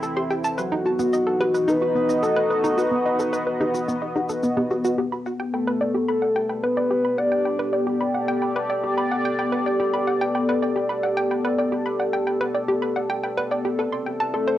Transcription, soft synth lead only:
0.58 F#4
1.68 B4
2.23 A4
2.78 B4
5.53 A4
6.08 A4
6.63 B4
7.18 D5
14.34 A4

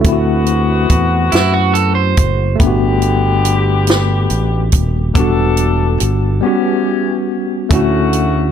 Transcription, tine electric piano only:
0.01 A3 C4
0.08 E4
0.12 F#4
2.56 A3 B3
2.63 D4 F#4
5.14 G3 B3 D4
5.20 F#4
6.41 G3 B3 C#4
6.47 F#4
7.69 A3 C#4 E4
7.75 F#4

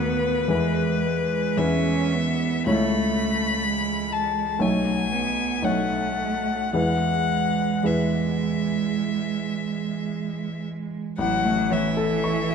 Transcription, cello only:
Already playing: B3
0.50 G#3
1.03 G#3
1.59 C#4
2.13 B3
2.69 A3
3.64 G#3
4.61 F#3
5.12 B3
5.66 A3
6.76 G#3
11.19 F#3
11.70 E3

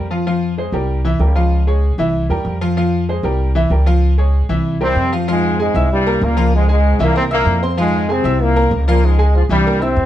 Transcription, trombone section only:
4.82 C3 C4
5.29 G#2 G#3
5.61 G#2 G#3
5.92 G2 G3
6.23 A#2 A#3
6.55 G#2 G#3
6.70 G#2 G#3
7.01 A#2 A#3
7.16 C3 C4
7.32 A#2 A#3
7.78 G#2 G#3
8.10 C3 C4
8.41 A#2 A#3
8.88 A#2 A#3
9.04 G#2 G#3
9.35 F3 F4
9.51 G2 G3
9.82 C3 C4

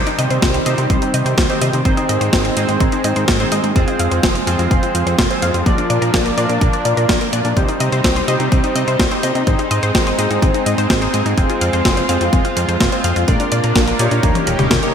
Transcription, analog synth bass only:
0.19 C3
0.30 C3
0.42 C2
0.66 C3
0.78 C3
0.90 C2
1.14 C3
1.26 C3
1.38 C2
1.61 C3
1.73 C3
1.85 G#1
2.09 G#2
2.21 G#2
2.33 G#1
2.57 G#2
2.69 G#2
2.80 G#1
3.04 G#2
3.16 G#2
3.28 G#1
3.52 G#2
3.64 G#2
3.76 F1
4.00 F2
4.11 F2
4.23 F1
4.47 F2
4.59 F2
4.71 F1
4.95 F2
5.06 F2
5.19 F1
5.42 F2
5.54 F2
5.66 A#1
5.90 A#2
6.02 A#2
6.14 A#1
6.37 A#2
6.49 A#2
6.61 A#1
6.85 A#2
6.97 A#2
7.09 A#1
7.33 A#2
7.45 A#2
7.57 C2
7.80 C3
7.92 C3
8.04 C2
8.28 C3
8.40 C3
8.52 C2
8.76 C3
8.87 C3
8.99 C2
9.23 C3
9.35 C3
9.47 G#1
9.71 G#2
9.83 G#2
9.95 G#1
10.19 G#2
10.30 G#2
10.42 G#1
10.66 G#2
10.78 G#2
10.90 G#1
11.14 G#2
11.26 G#2
11.38 F1
11.61 F2
11.73 F2
11.85 F1
12.09 F2
12.21 F2
12.33 F1
12.57 F2
12.68 F2
12.80 F1
13.04 F2
13.16 F2
13.28 A#1
13.52 A#2
13.64 A#2
13.76 A#1
13.99 A#2
14.11 A#2
14.23 D#2
14.47 D#1
14.59 D#1
14.71 D#2

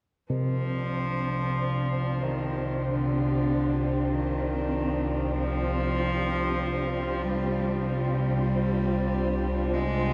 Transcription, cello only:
0.32 F3
2.22 D#3
2.84 D3
4.12 D#3
5.32 F3
7.23 G3
7.84 G3
9.73 G#3

